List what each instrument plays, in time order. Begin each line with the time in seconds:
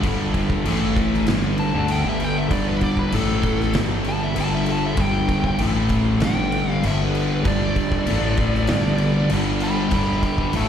Already playing: string machine G3 D4 A4
0.03 fingered electric bass G1, distorted electric guitar G2 D3 G3, kick, crash
0.34 kick, crash
0.50 kick
0.65 fingered electric bass A1, distorted electric guitar A2 E3 A3, string machine A3 E4 B4, crash
0.97 kick, crash
1.13 snare
1.27 fingered electric bass G1, distorted electric guitar G2 D3 G3, string machine G3 D4 A4, snare, crash
1.58 lead electric guitar A5, crash
1.74 fingered electric bass D2, distorted electric guitar D3 A3 D4
1.88 lead electric guitar G5, crash
2.04 fingered electric bass G1, distorted electric guitar G2 D3 G3
2.09 lead electric guitar E5
2.20 crash
2.24 lead electric guitar G5
2.38 lead electric guitar E5
2.50 fingered electric bass G1, distorted electric guitar G2 D3 G3, lead electric guitar D5, kick, crash
2.69 lead electric guitar B4
2.81 lead electric guitar D5, kick, crash
2.97 lead electric guitar B4, kick
3.12 fingered electric bass A1, distorted electric guitar A2 E3 A3, string machine A3 E4 B4, lead electric guitar A4, crash
3.43 kick, crash
3.60 snare
3.73 fingered electric bass G1, distorted electric guitar G2 D3 G3, string machine G3 D4 A4, snare, crash
4.04 crash
4.09 lead electric guitar A5
4.24 lead electric guitar E5
4.36 fingered electric bass G1, distorted electric guitar G2 D3 G3, crash
4.40 lead electric guitar A5
4.55 lead electric guitar E5
4.66 crash
4.72 lead electric guitar A5
4.86 lead electric guitar E5
4.97 fingered electric bass G1, distorted electric guitar G2 D3 G3, lead electric guitar G5, kick, crash
5.29 kick, crash
5.44 kick
5.58 fingered electric bass A1, distorted electric guitar A2 E3 A3, string machine E4 B4, crash
5.62 string machine A3
5.89 kick, crash
6.19 fingered electric bass G1, distorted electric guitar G2 D3 G3, string machine G3 D4 A4, snare, crash
6.25 lead electric guitar G5
6.52 crash
6.72 lead electric guitar F5
6.83 fingered electric bass G1, distorted electric guitar G2 D3 G3, lead electric guitar E5, crash
7.04 lead electric guitar B4
7.15 crash
7.45 fingered electric bass G1, distorted electric guitar G2 D3 G3, lead electric guitar D5, kick, crash
7.76 kick, crash
7.92 kick
8.04 distorted electric guitar A2, string machine A3 E4 B4, crash
8.08 fingered electric bass A1, distorted electric guitar E3 A3
8.37 kick, crash
8.54 snare
8.67 fingered electric bass G1, distorted electric guitar G2 D3 G3, string machine G3 D4 A4, snare, crash
8.98 crash
9.30 fingered electric bass G1, distorted electric guitar G2 D3 G3, crash
9.60 lead electric guitar G5 B5, crash
9.91 fingered electric bass G1, distorted electric guitar G2 D3 G3, lead electric guitar G5 B5, kick, crash
10.23 lead electric guitar G5 B5, kick, crash
10.38 kick
10.52 fingered electric bass A1, distorted electric guitar A2 E3, string machine A3 E4 B4, lead electric guitar E5 A5, crash
10.57 distorted electric guitar A3